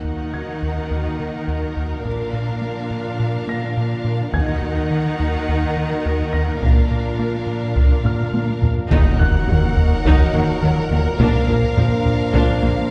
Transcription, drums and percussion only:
4.33 taiko medium
6.62 taiko medium
7.76 taiko medium
8.05 taiko low-mid medium
8.34 taiko high medium
8.62 taiko low medium
8.91 taiko loud
9.19 taiko low soft
9.49 taiko low medium
9.77 taiko low medium
10.05 taiko medium
10.34 taiko low medium
11.20 taiko loud
11.48 taiko low soft
11.77 taiko low medium
12.06 taiko low soft
12.34 taiko medium
12.63 taiko low soft

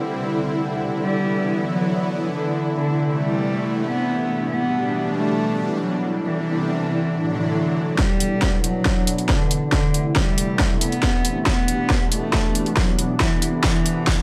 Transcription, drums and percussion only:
7.99 kick medium
7.99 snare soft
8.20 closed hi-hat medium
8.42 kick medium
8.42 snare soft
8.64 closed hi-hat medium
8.85 kick medium
8.85 snare soft
9.07 closed hi-hat medium
9.18 closed hi-hat soft
9.29 kick medium
9.29 snare soft
9.51 closed hi-hat medium
9.72 kick loud
9.72 snare medium
9.94 closed hi-hat medium
10.16 kick loud
10.16 snare medium
10.38 closed hi-hat medium
10.59 kick medium
10.59 snare medium
10.81 closed hi-hat medium
10.92 closed hi-hat soft
11.03 kick loud
11.03 snare medium
11.25 closed hi-hat medium
11.46 kick medium
11.46 snare medium
11.68 closed hi-hat medium
11.90 kick loud
11.90 snare medium
12.12 closed hi-hat medium
12.33 kick medium
12.33 snare medium
12.55 closed hi-hat medium
12.66 closed hi-hat soft
12.77 kick loud
12.77 snare medium
12.99 closed hi-hat medium
13.20 kick medium
13.20 snare medium
13.42 closed hi-hat medium
13.64 kick medium
13.64 snare medium
13.86 closed hi-hat medium
14.07 kick loud
14.07 snare medium

